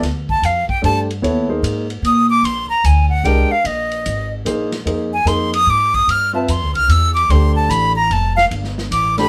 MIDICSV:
0, 0, Header, 1, 6, 480
1, 0, Start_track
1, 0, Tempo, 404585
1, 21, Time_signature, 3, 2, 24, 8
1, 11019, End_track
2, 0, Start_track
2, 0, Title_t, "Flute"
2, 0, Program_c, 0, 73
2, 356, Note_on_c, 0, 81, 93
2, 535, Note_on_c, 0, 77, 78
2, 553, Note_off_c, 0, 81, 0
2, 810, Note_off_c, 0, 77, 0
2, 817, Note_on_c, 0, 79, 88
2, 971, Note_off_c, 0, 79, 0
2, 1003, Note_on_c, 0, 81, 89
2, 1183, Note_off_c, 0, 81, 0
2, 2438, Note_on_c, 0, 87, 91
2, 2720, Note_off_c, 0, 87, 0
2, 2730, Note_on_c, 0, 86, 105
2, 2903, Note_on_c, 0, 84, 88
2, 2921, Note_off_c, 0, 86, 0
2, 3193, Note_off_c, 0, 84, 0
2, 3200, Note_on_c, 0, 82, 84
2, 3388, Note_on_c, 0, 80, 75
2, 3405, Note_off_c, 0, 82, 0
2, 3663, Note_off_c, 0, 80, 0
2, 3671, Note_on_c, 0, 78, 95
2, 3855, Note_on_c, 0, 79, 97
2, 3873, Note_off_c, 0, 78, 0
2, 4170, Note_on_c, 0, 77, 87
2, 4188, Note_off_c, 0, 79, 0
2, 4346, Note_on_c, 0, 75, 80
2, 4364, Note_off_c, 0, 77, 0
2, 5135, Note_off_c, 0, 75, 0
2, 6091, Note_on_c, 0, 80, 86
2, 6260, Note_on_c, 0, 84, 87
2, 6278, Note_off_c, 0, 80, 0
2, 6567, Note_off_c, 0, 84, 0
2, 6574, Note_on_c, 0, 87, 112
2, 6762, Note_on_c, 0, 86, 95
2, 6780, Note_off_c, 0, 87, 0
2, 7056, Note_on_c, 0, 87, 103
2, 7073, Note_off_c, 0, 86, 0
2, 7246, Note_on_c, 0, 89, 95
2, 7264, Note_off_c, 0, 87, 0
2, 7526, Note_off_c, 0, 89, 0
2, 7533, Note_on_c, 0, 81, 51
2, 7718, Note_on_c, 0, 84, 85
2, 7736, Note_off_c, 0, 81, 0
2, 8001, Note_off_c, 0, 84, 0
2, 8008, Note_on_c, 0, 89, 106
2, 8196, Note_on_c, 0, 88, 96
2, 8213, Note_off_c, 0, 89, 0
2, 8466, Note_off_c, 0, 88, 0
2, 8474, Note_on_c, 0, 86, 95
2, 8668, Note_on_c, 0, 84, 85
2, 8686, Note_off_c, 0, 86, 0
2, 8959, Note_off_c, 0, 84, 0
2, 8966, Note_on_c, 0, 81, 87
2, 9135, Note_on_c, 0, 83, 99
2, 9153, Note_off_c, 0, 81, 0
2, 9435, Note_off_c, 0, 83, 0
2, 9442, Note_on_c, 0, 82, 98
2, 9642, Note_on_c, 0, 81, 92
2, 9659, Note_off_c, 0, 82, 0
2, 9915, Note_off_c, 0, 81, 0
2, 9922, Note_on_c, 0, 77, 102
2, 10026, Note_off_c, 0, 77, 0
2, 10584, Note_on_c, 0, 86, 89
2, 10872, Note_off_c, 0, 86, 0
2, 10898, Note_on_c, 0, 83, 96
2, 11019, Note_off_c, 0, 83, 0
2, 11019, End_track
3, 0, Start_track
3, 0, Title_t, "Upright piano"
3, 0, Program_c, 1, 0
3, 971, Note_on_c, 1, 57, 59
3, 974, Note_on_c, 1, 62, 61
3, 985, Note_on_c, 1, 67, 54
3, 990, Note_on_c, 1, 72, 69
3, 1256, Note_off_c, 1, 57, 0
3, 1258, Note_off_c, 1, 62, 0
3, 1264, Note_off_c, 1, 67, 0
3, 1266, Note_off_c, 1, 72, 0
3, 1449, Note_on_c, 1, 59, 60
3, 1457, Note_on_c, 1, 64, 54
3, 1464, Note_on_c, 1, 73, 68
3, 1465, Note_on_c, 1, 69, 56
3, 1735, Note_off_c, 1, 59, 0
3, 1739, Note_off_c, 1, 64, 0
3, 1743, Note_off_c, 1, 69, 0
3, 1743, Note_off_c, 1, 73, 0
3, 1767, Note_on_c, 1, 58, 62
3, 1767, Note_on_c, 1, 63, 53
3, 1774, Note_on_c, 1, 68, 55
3, 1777, Note_on_c, 1, 72, 69
3, 2187, Note_off_c, 1, 58, 0
3, 2187, Note_off_c, 1, 63, 0
3, 2190, Note_off_c, 1, 68, 0
3, 2192, Note_off_c, 1, 72, 0
3, 3850, Note_on_c, 1, 56, 62
3, 3859, Note_on_c, 1, 62, 59
3, 3867, Note_on_c, 1, 67, 57
3, 3871, Note_on_c, 1, 70, 70
3, 4136, Note_off_c, 1, 56, 0
3, 4140, Note_off_c, 1, 62, 0
3, 4144, Note_off_c, 1, 67, 0
3, 4146, Note_off_c, 1, 70, 0
3, 5284, Note_on_c, 1, 58, 63
3, 5291, Note_on_c, 1, 63, 62
3, 5298, Note_on_c, 1, 68, 59
3, 5299, Note_on_c, 1, 72, 78
3, 5573, Note_off_c, 1, 58, 0
3, 5576, Note_off_c, 1, 63, 0
3, 5580, Note_off_c, 1, 68, 0
3, 5580, Note_off_c, 1, 72, 0
3, 5760, Note_on_c, 1, 58, 61
3, 5766, Note_on_c, 1, 63, 56
3, 5778, Note_on_c, 1, 68, 55
3, 5780, Note_on_c, 1, 72, 67
3, 6051, Note_off_c, 1, 58, 0
3, 6054, Note_off_c, 1, 63, 0
3, 6060, Note_off_c, 1, 68, 0
3, 6061, Note_off_c, 1, 72, 0
3, 6237, Note_on_c, 1, 58, 60
3, 6244, Note_on_c, 1, 63, 59
3, 6251, Note_on_c, 1, 68, 53
3, 6258, Note_on_c, 1, 72, 66
3, 6529, Note_off_c, 1, 58, 0
3, 6533, Note_off_c, 1, 63, 0
3, 6536, Note_off_c, 1, 68, 0
3, 6540, Note_off_c, 1, 72, 0
3, 7512, Note_on_c, 1, 60, 67
3, 7518, Note_on_c, 1, 65, 61
3, 7525, Note_on_c, 1, 71, 62
3, 7531, Note_on_c, 1, 76, 70
3, 7674, Note_off_c, 1, 60, 0
3, 7676, Note_off_c, 1, 65, 0
3, 7680, Note_off_c, 1, 71, 0
3, 7683, Note_off_c, 1, 76, 0
3, 8662, Note_on_c, 1, 57, 59
3, 8665, Note_on_c, 1, 62, 55
3, 8668, Note_on_c, 1, 67, 57
3, 8676, Note_on_c, 1, 72, 68
3, 9391, Note_off_c, 1, 57, 0
3, 9392, Note_off_c, 1, 62, 0
3, 9394, Note_off_c, 1, 67, 0
3, 9398, Note_off_c, 1, 72, 0
3, 10890, Note_on_c, 1, 57, 73
3, 10895, Note_on_c, 1, 62, 68
3, 10905, Note_on_c, 1, 67, 63
3, 10914, Note_on_c, 1, 72, 76
3, 11019, Note_off_c, 1, 57, 0
3, 11019, Note_off_c, 1, 62, 0
3, 11019, Note_off_c, 1, 67, 0
3, 11019, Note_off_c, 1, 72, 0
3, 11019, End_track
4, 0, Start_track
4, 0, Title_t, "Upright bass"
4, 0, Program_c, 2, 32
4, 16, Note_on_c, 2, 38, 80
4, 484, Note_off_c, 2, 38, 0
4, 499, Note_on_c, 2, 41, 86
4, 790, Note_off_c, 2, 41, 0
4, 987, Note_on_c, 2, 43, 84
4, 1446, Note_off_c, 2, 43, 0
4, 1454, Note_on_c, 2, 39, 79
4, 1919, Note_off_c, 2, 39, 0
4, 1926, Note_on_c, 2, 44, 88
4, 2393, Note_off_c, 2, 44, 0
4, 2400, Note_on_c, 2, 46, 89
4, 2871, Note_off_c, 2, 46, 0
4, 2879, Note_on_c, 2, 34, 81
4, 3179, Note_off_c, 2, 34, 0
4, 3369, Note_on_c, 2, 38, 92
4, 3830, Note_off_c, 2, 38, 0
4, 3837, Note_on_c, 2, 36, 91
4, 4135, Note_off_c, 2, 36, 0
4, 4322, Note_on_c, 2, 34, 83
4, 4797, Note_off_c, 2, 34, 0
4, 4817, Note_on_c, 2, 32, 92
4, 5277, Note_off_c, 2, 32, 0
4, 5284, Note_on_c, 2, 34, 89
4, 5751, Note_off_c, 2, 34, 0
4, 5758, Note_on_c, 2, 41, 80
4, 6218, Note_off_c, 2, 41, 0
4, 6225, Note_on_c, 2, 41, 89
4, 6708, Note_off_c, 2, 41, 0
4, 6720, Note_on_c, 2, 44, 90
4, 7196, Note_off_c, 2, 44, 0
4, 7205, Note_on_c, 2, 43, 74
4, 7678, Note_off_c, 2, 43, 0
4, 7688, Note_on_c, 2, 41, 90
4, 7849, Note_off_c, 2, 41, 0
4, 7849, Note_on_c, 2, 38, 56
4, 8001, Note_off_c, 2, 38, 0
4, 8008, Note_on_c, 2, 36, 64
4, 8157, Note_off_c, 2, 36, 0
4, 8164, Note_on_c, 2, 40, 97
4, 8637, Note_off_c, 2, 40, 0
4, 8648, Note_on_c, 2, 38, 86
4, 9114, Note_off_c, 2, 38, 0
4, 9121, Note_on_c, 2, 33, 95
4, 9596, Note_off_c, 2, 33, 0
4, 9614, Note_on_c, 2, 29, 86
4, 10083, Note_off_c, 2, 29, 0
4, 10095, Note_on_c, 2, 31, 85
4, 10564, Note_off_c, 2, 31, 0
4, 10569, Note_on_c, 2, 33, 90
4, 11019, Note_off_c, 2, 33, 0
4, 11019, End_track
5, 0, Start_track
5, 0, Title_t, "Muted upright bass strokes"
5, 813, Note_on_c, 9, 29, 38
5, 931, Note_off_c, 9, 29, 0
5, 3201, Note_on_c, 9, 29, 34
5, 3320, Note_off_c, 9, 29, 0
5, 11019, End_track
6, 0, Start_track
6, 0, Title_t, "Drums"
6, 38, Note_on_c, 9, 38, 37
6, 39, Note_on_c, 9, 51, 55
6, 156, Note_off_c, 9, 38, 0
6, 158, Note_off_c, 9, 51, 0
6, 345, Note_on_c, 9, 36, 54
6, 464, Note_off_c, 9, 36, 0
6, 514, Note_on_c, 9, 44, 51
6, 514, Note_on_c, 9, 51, 62
6, 633, Note_off_c, 9, 44, 0
6, 633, Note_off_c, 9, 51, 0
6, 819, Note_on_c, 9, 36, 60
6, 938, Note_off_c, 9, 36, 0
6, 996, Note_on_c, 9, 51, 52
6, 1115, Note_off_c, 9, 51, 0
6, 1311, Note_on_c, 9, 51, 45
6, 1430, Note_off_c, 9, 51, 0
6, 1474, Note_on_c, 9, 51, 58
6, 1592, Note_off_c, 9, 51, 0
6, 1945, Note_on_c, 9, 44, 49
6, 1945, Note_on_c, 9, 51, 72
6, 2064, Note_off_c, 9, 44, 0
6, 2064, Note_off_c, 9, 51, 0
6, 2255, Note_on_c, 9, 51, 46
6, 2373, Note_off_c, 9, 51, 0
6, 2427, Note_on_c, 9, 44, 50
6, 2427, Note_on_c, 9, 51, 61
6, 2546, Note_off_c, 9, 44, 0
6, 2546, Note_off_c, 9, 51, 0
6, 2908, Note_on_c, 9, 51, 63
6, 3027, Note_off_c, 9, 51, 0
6, 3375, Note_on_c, 9, 44, 58
6, 3375, Note_on_c, 9, 51, 66
6, 3494, Note_off_c, 9, 44, 0
6, 3494, Note_off_c, 9, 51, 0
6, 3859, Note_on_c, 9, 51, 57
6, 3978, Note_off_c, 9, 51, 0
6, 4330, Note_on_c, 9, 51, 65
6, 4448, Note_off_c, 9, 51, 0
6, 4645, Note_on_c, 9, 51, 42
6, 4764, Note_off_c, 9, 51, 0
6, 4813, Note_on_c, 9, 44, 51
6, 4813, Note_on_c, 9, 51, 66
6, 4932, Note_off_c, 9, 44, 0
6, 4932, Note_off_c, 9, 51, 0
6, 5292, Note_on_c, 9, 44, 57
6, 5292, Note_on_c, 9, 51, 59
6, 5410, Note_off_c, 9, 44, 0
6, 5410, Note_off_c, 9, 51, 0
6, 5603, Note_on_c, 9, 38, 40
6, 5604, Note_on_c, 9, 51, 45
6, 5721, Note_off_c, 9, 38, 0
6, 5722, Note_off_c, 9, 51, 0
6, 5775, Note_on_c, 9, 51, 60
6, 5894, Note_off_c, 9, 51, 0
6, 6251, Note_on_c, 9, 44, 51
6, 6251, Note_on_c, 9, 51, 68
6, 6370, Note_off_c, 9, 44, 0
6, 6370, Note_off_c, 9, 51, 0
6, 6567, Note_on_c, 9, 51, 70
6, 6686, Note_off_c, 9, 51, 0
6, 7049, Note_on_c, 9, 36, 49
6, 7168, Note_off_c, 9, 36, 0
6, 7224, Note_on_c, 9, 51, 69
6, 7343, Note_off_c, 9, 51, 0
6, 7693, Note_on_c, 9, 44, 57
6, 7693, Note_on_c, 9, 51, 68
6, 7811, Note_off_c, 9, 44, 0
6, 7811, Note_off_c, 9, 51, 0
6, 8011, Note_on_c, 9, 51, 46
6, 8130, Note_off_c, 9, 51, 0
6, 8180, Note_on_c, 9, 44, 57
6, 8180, Note_on_c, 9, 51, 68
6, 8299, Note_off_c, 9, 44, 0
6, 8299, Note_off_c, 9, 51, 0
6, 8501, Note_on_c, 9, 51, 46
6, 8619, Note_off_c, 9, 51, 0
6, 8664, Note_on_c, 9, 51, 65
6, 8782, Note_off_c, 9, 51, 0
6, 9141, Note_on_c, 9, 44, 60
6, 9141, Note_on_c, 9, 51, 65
6, 9260, Note_off_c, 9, 44, 0
6, 9260, Note_off_c, 9, 51, 0
6, 9619, Note_on_c, 9, 51, 61
6, 9737, Note_off_c, 9, 51, 0
6, 9937, Note_on_c, 9, 38, 46
6, 10055, Note_off_c, 9, 38, 0
6, 10099, Note_on_c, 9, 51, 59
6, 10218, Note_off_c, 9, 51, 0
6, 10250, Note_on_c, 9, 38, 29
6, 10369, Note_off_c, 9, 38, 0
6, 10418, Note_on_c, 9, 38, 48
6, 10537, Note_off_c, 9, 38, 0
6, 10580, Note_on_c, 9, 44, 50
6, 10580, Note_on_c, 9, 51, 72
6, 10699, Note_off_c, 9, 44, 0
6, 10699, Note_off_c, 9, 51, 0
6, 10888, Note_on_c, 9, 38, 40
6, 10889, Note_on_c, 9, 51, 43
6, 11007, Note_off_c, 9, 38, 0
6, 11008, Note_off_c, 9, 51, 0
6, 11019, End_track
0, 0, End_of_file